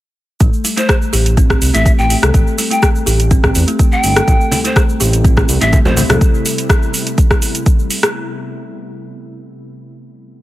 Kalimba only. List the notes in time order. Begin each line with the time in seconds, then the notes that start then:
0.40 A3
0.64 G3
0.77 A3
1.13 G4
1.37 C4
1.74 A3
1.85 A3
2.10 A3
2.22 A4
2.34 A3
2.58 G3
2.71 A3
2.82 A3
3.06 G4
3.31 C4
3.68 A3
3.79 A3
4.03 A3
4.16 A4
4.28 A3
4.52 G3
4.64 A3
4.76 A3
5.00 G4
5.24 C4
5.61 A3
5.73 A3
5.97 A3
6.10 A4